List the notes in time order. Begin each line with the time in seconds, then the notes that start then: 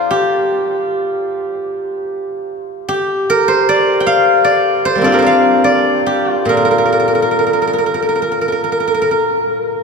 Already playing: F4 A#4 C5 D5
0.11 G4
2.89 G4
3.30 A#4
3.48 C5
3.69 D5
4.00 G5
4.07 F5
4.44 D5
4.85 C5
4.95 G3 A#3
5.01 C4 D4 F4 D5
5.12 G4 A#4
5.19 C5 D5
5.26 F5
5.64 D5
6.06 G4
6.30 F4
6.45 A#2 A#4
6.57 A#4
6.65 A#4
6.71 A#4
6.78 A#4
6.85 A#4
6.92 A#4
7.00 A#4
7.08 A#4
7.15 A#4
7.22 A#4
7.31 A#4
7.39 A#4
7.47 A#4
7.53 A#4
7.62 A#4
7.67 A#4
7.73 A#4
7.78 A#4
7.86 A#4
7.94 A#4
8.02 A#4
8.09 A#4
8.15 A#4
8.22 A#4
8.32 A#4
8.41 A#4
8.48 A#4
8.52 A#4
8.64 A#4
8.72 A#4
8.80 A#4
8.87 A#4
8.94 A#4
9.02 A#4
9.11 A#4